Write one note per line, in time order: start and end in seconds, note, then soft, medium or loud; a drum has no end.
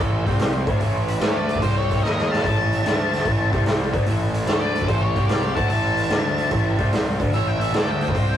0.00 0.25 A1 medium
0.00 0.25 A2 medium
0.00 0.26 E3 medium
0.00 0.26 A3 loud
0.00 0.25 C#4 medium
0.00 0.25 E4 medium
0.00 0.25 A4 medium
0.00 0.37 A4 medium
0.00 0.26 C#5 medium
0.26 0.65 C2 medium
0.26 0.66 C3 medium
0.26 0.67 G3 medium
0.26 0.65 G3 medium
0.26 0.67 C4 medium
0.26 0.65 C4 medium
0.26 0.65 G4 medium
0.26 0.65 C5 loud
0.26 kick medium
0.26 open hi-hat soft
0.39 snare loud
0.39 open hi-hat medium
0.67 0.80 D2 medium
0.67 0.80 D3 medium
0.67 0.81 A3 loud
0.67 1.05 C#4 medium
0.67 0.81 D4 loud
0.67 1.06 E4 medium
0.67 1.06 A4 medium
0.67 1.06 C#5 medium
0.67 kick loud
0.67 open hi-hat medium
0.80 1.19 A1 medium
0.80 1.20 A2 medium
0.80 1.21 E3 loud
0.80 1.20 A3 loud
0.80 open hi-hat medium
1.08 1.21 C#4 medium
1.08 1.21 E4 medium
1.08 1.19 A4 medium
1.08 1.21 B4 medium
1.08 open hi-hat soft
1.20 1.60 D2 medium
1.20 1.62 D3 medium
1.20 1.47 A3 medium
1.20 1.62 A3 medium
1.20 1.48 D4 medium
1.20 1.63 D4 loud
1.20 1.47 A4 medium
1.20 1.36 A4 medium
1.20 1.35 C#5 medium
1.20 1.48 D5 medium
1.20 snare loud
1.20 open hi-hat medium
1.37 1.62 B4 medium
1.37 1.62 D5 medium
1.49 1.62 A3 medium
1.49 1.62 D4 medium
1.49 1.62 A4 medium
1.49 1.62 D5 medium
1.49 open hi-hat soft
1.55 kick medium
1.62 2.01 C2 medium
1.62 2.02 C3 medium
1.62 1.89 G3 medium
1.62 2.03 G3 medium
1.62 1.89 C4 medium
1.62 2.04 C4 medium
1.62 1.89 G4 medium
1.62 1.76 G4 medium
1.62 1.76 C5 medium
1.62 1.89 C5 medium
1.62 kick medium
1.62 open hi-hat medium
1.77 2.02 A4 medium
1.77 2.03 C#5 medium
1.90 2.03 G3 medium
1.90 2.03 C4 medium
1.90 2.03 G4 medium
1.90 2.03 C5 medium
1.90 kick medium
1.90 open hi-hat soft
2.03 2.42 D#2 medium
2.03 2.43 D#3 medium
2.03 2.30 A#3 medium
2.03 2.44 A#3 medium
2.03 2.44 D#4 medium
2.03 2.30 D#4 medium
2.03 2.29 A#4 medium
2.03 2.30 A#4 medium
2.03 2.30 D#5 medium
2.03 snare medium
2.18 snare medium
2.31 2.44 A#3 medium
2.31 2.44 D#4 medium
2.31 2.45 A#4 medium
2.31 2.44 F5 medium
2.31 2.45 F5 medium
2.31 2.42 A5 medium
2.31 snare medium
2.39 snare medium
2.43 2.82 A1 medium
2.43 2.85 A2 medium
2.43 2.85 E3 loud
2.43 2.85 A3 loud
2.43 2.70 C#4 medium
2.43 2.70 E4 medium
2.43 2.71 A4 medium
2.43 2.71 C#5 medium
2.43 3.64 E5 medium
2.43 3.63 A5 medium
2.43 kick loud
2.43 open hi-hat medium
2.72 2.85 C#4 medium
2.72 2.85 E4 medium
2.72 2.84 A4 medium
2.72 2.85 E5 medium
2.72 open hi-hat soft
2.84 3.23 D2 medium
2.84 3.25 D3 medium
2.84 3.11 A3 medium
2.84 3.25 A3 medium
2.84 3.11 D4 medium
2.84 3.26 D4 medium
2.84 3.11 A4 medium
2.84 3.11 D5 medium
2.84 snare loud
2.84 open hi-hat medium
3.13 3.26 A3 medium
3.13 3.26 D4 medium
3.13 3.25 A4 medium
3.13 3.26 D5 medium
3.13 snare soft
3.13 open hi-hat soft
3.25 3.51 A1 medium
3.25 3.53 A2 medium
3.25 3.53 E3 medium
3.25 3.54 A3 loud
3.25 3.52 C#4 medium
3.25 3.52 E4 medium
3.25 3.52 A4 medium
3.25 3.53 C#5 medium
3.25 kick loud
3.25 open hi-hat medium
3.51 3.91 C2 medium
3.51 3.93 C3 medium
3.51 3.91 G3 medium
3.51 3.93 G3 medium
3.51 3.91 C4 medium
3.51 3.94 C4 medium
3.51 3.91 G4 medium
3.51 3.91 C5 medium
3.51 kick medium
3.51 open hi-hat soft
3.66 snare loud
3.66 open hi-hat medium
3.92 4.06 D2 medium
3.92 4.06 D3 medium
3.92 4.06 A3 medium
3.92 4.31 C#4 medium
3.92 4.07 D4 medium
3.92 4.31 E4 medium
3.92 4.32 A4 medium
3.92 4.31 C#5 medium
3.92 kick loud
3.92 open hi-hat soft
4.06 4.46 A1 medium
4.06 4.47 A2 medium
4.06 4.48 E3 loud
4.06 4.47 A3 loud
4.06 open hi-hat medium
4.33 4.47 C#4 medium
4.33 4.47 E4 medium
4.33 4.46 A4 medium
4.33 4.47 C#5 medium
4.33 open hi-hat soft
4.46 4.86 D2 medium
4.46 4.88 D3 medium
4.46 4.73 A3 medium
4.46 4.88 A3 medium
4.46 4.73 D4 medium
4.46 4.89 D4 medium
4.46 4.74 A4 medium
4.46 4.63 A4 medium
4.46 4.59 C#5 medium
4.46 4.74 D5 medium
4.46 snare loud
4.46 open hi-hat medium
4.59 4.89 B4 medium
4.59 4.87 D5 medium
4.74 4.88 A3 medium
4.74 4.88 D4 medium
4.74 4.86 A4 medium
4.74 4.88 D5 medium
4.74 open hi-hat soft
4.82 kick medium
4.86 5.15 A1 medium
4.86 5.15 A2 medium
4.86 5.16 E3 medium
4.86 5.16 A3 medium
4.86 5.14 C#4 medium
4.86 5.14 E4 medium
4.86 5.15 A4 medium
4.86 5.02 A4 medium
4.86 5.02 C5 medium
4.86 5.15 C#5 medium
4.86 kick medium
4.86 open hi-hat medium
5.01 5.28 G4 medium
5.01 5.27 C#5 medium
5.13 5.55 C2 medium
5.13 5.56 C3 medium
5.13 5.53 G3 medium
5.13 5.57 G3 medium
5.13 5.53 C4 medium
5.13 5.57 C4 medium
5.13 5.53 G4 medium
5.13 5.54 C5 medium
5.13 kick medium
5.13 open hi-hat soft
5.27 5.56 G4 medium
5.27 5.55 D5 medium
5.27 snare loud
5.27 open hi-hat medium
5.55 5.69 D2 medium
5.55 5.69 D3 medium
5.55 5.70 A3 medium
5.55 5.93 C#4 medium
5.55 5.70 D4 medium
5.55 5.94 E4 medium
5.55 5.94 A4 medium
5.55 5.95 C#5 medium
5.55 5.71 F#5 medium
5.55 5.68 A5 medium
5.55 kick loud
5.55 open hi-hat medium
5.69 6.08 A1 medium
5.69 6.09 A2 medium
5.69 6.10 E3 loud
5.69 6.09 A3 loud
5.69 6.91 E5 medium
5.69 6.89 A5 medium
5.69 open hi-hat medium
5.95 6.09 C#4 medium
5.95 6.09 E4 medium
5.95 6.08 A4 medium
5.95 6.10 C#5 medium
5.95 open hi-hat soft
6.10 6.49 D2 loud
6.10 6.51 D3 medium
6.10 6.35 A3 medium
6.10 6.51 A3 medium
6.10 6.35 D4 medium
6.10 6.52 D4 medium
6.10 6.35 A4 medium
6.10 6.36 D5 medium
6.10 snare loud
6.10 open hi-hat medium
6.36 6.50 A3 medium
6.36 6.51 D4 medium
6.36 6.49 A4 medium
6.36 6.51 D5 medium
6.36 open hi-hat soft
6.50 6.77 A1 medium
6.50 6.78 A2 medium
6.50 6.79 E3 medium
6.50 6.79 A3 loud
6.50 6.77 C#4 medium
6.50 6.78 E4 medium
6.50 6.78 A4 medium
6.50 6.78 C#5 loud
6.50 kick loud
6.50 open hi-hat medium
6.77 7.17 C2 medium
6.77 7.19 C3 medium
6.77 7.17 G3 medium
6.77 7.20 G3 medium
6.77 7.17 C4 medium
6.77 7.20 C4 medium
6.77 7.17 G4 medium
6.77 7.17 C5 medium
6.77 kick medium
6.77 open hi-hat soft
6.93 snare loud
6.93 open hi-hat medium
7.17 7.32 D2 medium
7.17 7.33 D3 medium
7.17 7.34 A3 medium
7.17 7.57 C#4 medium
7.17 7.57 E4 medium
7.17 7.57 A4 medium
7.17 7.57 C#5 medium
7.17 kick loud
7.17 open hi-hat soft
7.21 7.34 D4 medium
7.33 7.71 A1 medium
7.33 7.75 A2 loud
7.33 7.75 E3 loud
7.33 7.75 A3 loud
7.33 7.49 C#5 medium
7.33 7.47 E5 medium
7.33 open hi-hat medium
7.47 7.62 E5 medium
7.47 7.59 G5 medium
7.58 7.73 C#4 medium
7.58 7.73 E4 medium
7.58 7.72 A4 medium
7.58 7.73 B4 medium
7.58 7.74 E5 medium
7.58 open hi-hat soft
7.63 7.75 C#5 medium
7.72 8.13 D2 medium
7.72 8.14 D3 medium
7.72 7.98 A3 medium
7.72 8.15 A3 medium
7.72 7.99 D4 medium
7.72 8.16 D4 medium
7.72 7.99 A4 medium
7.72 8.00 D5 medium
7.72 7.89 D5 medium
7.72 snare loud
7.72 open hi-hat medium
7.77 7.89 A4 medium
7.89 8.02 E5 medium
7.89 8.01 G5 medium
8.00 8.14 A3 medium
8.00 8.14 D4 medium
8.00 8.14 A4 medium
8.00 8.37 C5 medium
8.00 8.14 C#5 medium
8.00 8.37 G5 medium
8.00 open hi-hat soft
8.08 kick medium
8.14 8.37 C2 medium
8.14 8.37 C3 medium
8.14 8.37 G3 medium
8.14 8.37 C4 medium
8.14 8.37 G4 medium
8.14 8.37 C5 medium
8.14 kick medium
8.14 open hi-hat medium